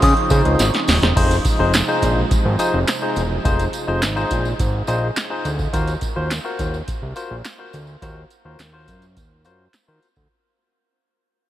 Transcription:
Already playing: C#3 F3 C4 D#4
0.02 C#3 D#6, kick, closed hi-hat, tambourine
0.17 closed hi-hat
0.30 C#3 D#4 F4 G#4 C5, kick, closed hi-hat, tambourine
0.45 C#2, closed hi-hat
0.59 G#1, snare, closed hi-hat, tambourine
0.74 snare, closed hi-hat
0.88 D#1, snare, open hi-hat, tambourine
1.02 E1 G#4 C5, snare, closed hi-hat
1.16 F1 C3 F3 G#3 D#4 F4 G#4 C5, kick, closed hi-hat, crash, tambourine
1.31 closed hi-hat, tambourine
1.45 kick, closed hi-hat, tambourine
1.59 F1 D#4 F4 G#4 C5
1.74 snare, clap, closed hi-hat, tambourine
1.88 D#4 F4 G#4 C5, tambourine
2.02 A#1, kick, closed hi-hat, tambourine
2.31 kick, closed hi-hat, tambourine
2.46 G#1
2.59 D#4 F4 G#4 C5, closed hi-hat, tambourine
2.74 F1
2.88 snare, clap, closed hi-hat, tambourine
3.02 D#4 F4 G#4 C5
3.16 E1, closed hi-hat, tambourine
3.45 F1 D#4 F4 G#4 C5, kick, closed hi-hat, tambourine
3.59 closed hi-hat, tambourine
3.73 closed hi-hat, tambourine
3.87 F1 D#4 F4 G#4 C5
4.02 G#1, snare, clap, closed hi-hat, tambourine
4.16 D#4 F4 G#4 C5, tambourine
4.31 A#1, kick, closed hi-hat, tambourine
4.45 tambourine
4.59 G#1, kick, closed hi-hat, tambourine
4.87 A#1 D#4 F4 G#4 C5, closed hi-hat, tambourine
5.16 snare, clap, closed hi-hat, tambourine
5.30 D#4 F4 G#4 C5
5.45 D2, closed hi-hat, tambourine
5.59 kick, tambourine
5.73 D#2 F4 F#4 A#4 C5, kick, closed hi-hat, tambourine
5.87 closed hi-hat, tambourine
6.01 kick, closed hi-hat, tambourine
6.16 D#2 F4 F#4 A#4 C5
6.31 snare, clap, closed hi-hat, tambourine
6.45 F4 F#4 A#4 C5, tambourine
6.59 D#2, kick, closed hi-hat, tambourine
6.74 tambourine
6.88 kick, closed hi-hat, tambourine
7.02 C2
7.16 F4 F#4 A#4 C5, closed hi-hat, tambourine
7.31 A#1
7.45 snare, clap, closed hi-hat, tambourine
7.59 F4 F#4 A#4 C5
7.73 D2, closed hi-hat, tambourine
7.87 tambourine
8.02 D#2 F4 F#4 A#4 C5, kick, closed hi-hat, tambourine
8.30 closed hi-hat, tambourine
8.45 D#2 F4 F#4 A#4 C5
8.59 D#2, snare, clap, closed hi-hat, tambourine
8.73 F4 F#4 A#4 C5
8.88 F#2, kick, closed hi-hat, tambourine
9.02 closed hi-hat, tambourine
9.17 D#2, kick, closed hi-hat, tambourine
9.44 F#2 F4 F#4 A#4 C5, closed hi-hat, tambourine
9.73 snare, clap, closed hi-hat, tambourine
9.88 D#3 F4 F#4 A#4 C5
10.02 closed hi-hat, tambourine
10.16 D2, kick, tambourine

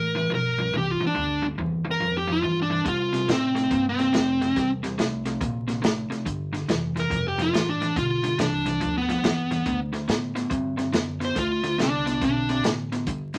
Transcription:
Already playing: A1 G2 E3 A#4
0.15 G2 E3
0.30 B1 G2 F3
0.35 A#4
0.58 G2 F3
0.73 C2 G2 E3
0.78 G4
0.91 F4
1.00 G2 E3, muted upright bass stroke
1.07 D4
1.15 D2 G2 D3
1.42 G2 D3
1.58 E2 G2 E3
1.85 G2 E3
1.91 A#4
2.00 F2 G2 F3
2.18 G4
2.27 G2 F3
2.32 F4
2.42 G2 E3
2.62 D4
2.70 G2 E3
2.85 C3 G3 F4, kick, closed hi-hat
3.13 C3 G3, snare, closed hi-hat
3.28 A2 C3 A3 C4, snare, closed hi-hat
3.55 C3 A3, snare, closed hi-hat
3.71 G2 C3 A#3, kick, closed hi-hat
3.89 C4
3.98 C3 A#3, snare, closed hi-hat
4.13 F2 C3 A3, snare, closed hi-hat
4.41 C3 A3, snare, closed hi-hat
4.56 E2 C3 G3, kick, snare, closed hi-hat
4.83 C3 G3, snare, closed hi-hat
4.98 C2 C3 A3, snare, closed hi-hat
5.25 C3 A3, snare, closed hi-hat
5.41 A#1 C3 A#3, kick, closed hi-hat
5.68 C3 A#3, snare, closed hi-hat
5.82 A1 C3 A3, snare, closed hi-hat
6.10 C3 A3, muted upright bass stroke, snare, closed hi-hat
6.25 G1 G2 D3, kick, closed hi-hat
6.53 G2 D3, snare, closed hi-hat
6.68 F1 G2 E3, snare, closed hi-hat
6.96 G2 E3, snare, closed hi-hat
7.00 A#4
7.10 F1 G2 F3, kick, snare, closed hi-hat
7.28 G4
7.38 G2 F3, snare, closed hi-hat
7.42 F4
7.53 A1 G2 E3, snare, closed hi-hat
7.70 D4
7.81 G2 E3, snare, closed hi-hat
7.96 B1 G2 D3 F4, kick, closed hi-hat
8.23 G2 D3, snare, closed hi-hat
8.38 C2 G2 E3 D4, snare, closed hi-hat
8.66 G2 E3, snare, closed hi-hat
8.80 D2 G2 F3, kick, closed hi-hat
8.98 B3
9.09 G2 F3, snare, closed hi-hat
9.23 E2 G2 E3, snare, closed hi-hat
9.51 G2 E3, snare, closed hi-hat
9.66 D2 D3 A3, kick, closed hi-hat
9.93 D3 A3, snare, closed hi-hat
10.08 A2 D3 B3, snare, closed hi-hat
10.35 D3 B3, snare, closed hi-hat
10.50 G2 D3 C4, kick, closed hi-hat
10.77 D3 C4, snare, closed hi-hat
10.93 F#2 D3 B3, snare, closed hi-hat
11.20 D3 B3, snare, closed hi-hat
11.25 C5
11.35 D2 D3 A3 F4, kick, snare, closed hi-hat
11.64 D3 A3, snare, closed hi-hat
11.78 C2 D3 B3, snare, closed hi-hat
11.83 D4
12.06 D3 B3, snare, closed hi-hat
12.21 B1 D3 C4 D4, kick, snare, closed hi-hat
12.49 D3 C4, snare, closed hi-hat
12.64 A1 D3 B3, snare, closed hi-hat
12.92 D3 B3, snare, closed hi-hat
13.07 G1 G2 D3, kick, closed hi-hat
13.34 G2 D3, snare, closed hi-hat

